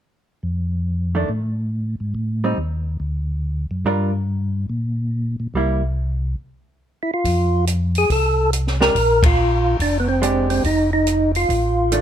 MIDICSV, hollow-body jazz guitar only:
0, 0, Header, 1, 2, 480
1, 0, Start_track
1, 0, Tempo, 424929
1, 494, Time_signature, 4, 2, 24, 8
1, 13571, End_track
2, 0, Start_track
2, 0, Title_t, "Hollow-body jazz guitar"
2, 0, Program_c, 0, 26
2, 1298, Note_on_c, 0, 51, 45
2, 1301, Note_on_c, 0, 57, 48
2, 1314, Note_on_c, 0, 62, 51
2, 1445, Note_off_c, 0, 51, 0
2, 1447, Note_off_c, 0, 57, 0
2, 1454, Note_off_c, 0, 62, 0
2, 2756, Note_on_c, 0, 55, 43
2, 2759, Note_on_c, 0, 60, 45
2, 2764, Note_on_c, 0, 63, 51
2, 2898, Note_off_c, 0, 55, 0
2, 2900, Note_off_c, 0, 60, 0
2, 2902, Note_off_c, 0, 63, 0
2, 4358, Note_on_c, 0, 55, 58
2, 4361, Note_on_c, 0, 62, 57
2, 4368, Note_on_c, 0, 70, 64
2, 4369, Note_on_c, 0, 65, 55
2, 4637, Note_off_c, 0, 55, 0
2, 4639, Note_off_c, 0, 62, 0
2, 4643, Note_off_c, 0, 65, 0
2, 4643, Note_off_c, 0, 70, 0
2, 6274, Note_on_c, 0, 55, 49
2, 6289, Note_on_c, 0, 58, 52
2, 6291, Note_on_c, 0, 64, 55
2, 6556, Note_off_c, 0, 55, 0
2, 6564, Note_off_c, 0, 58, 0
2, 6565, Note_off_c, 0, 64, 0
2, 9947, Note_on_c, 0, 56, 52
2, 9955, Note_on_c, 0, 62, 64
2, 9959, Note_on_c, 0, 67, 67
2, 10093, Note_off_c, 0, 56, 0
2, 10097, Note_off_c, 0, 62, 0
2, 10099, Note_off_c, 0, 67, 0
2, 11542, Note_on_c, 0, 56, 60
2, 11550, Note_on_c, 0, 62, 58
2, 11564, Note_on_c, 0, 67, 69
2, 12018, Note_off_c, 0, 56, 0
2, 12022, Note_off_c, 0, 62, 0
2, 12029, Note_off_c, 0, 67, 0
2, 13463, Note_on_c, 0, 51, 50
2, 13468, Note_on_c, 0, 57, 58
2, 13477, Note_on_c, 0, 62, 54
2, 13571, Note_off_c, 0, 51, 0
2, 13571, Note_off_c, 0, 57, 0
2, 13571, Note_off_c, 0, 62, 0
2, 13571, End_track
0, 0, End_of_file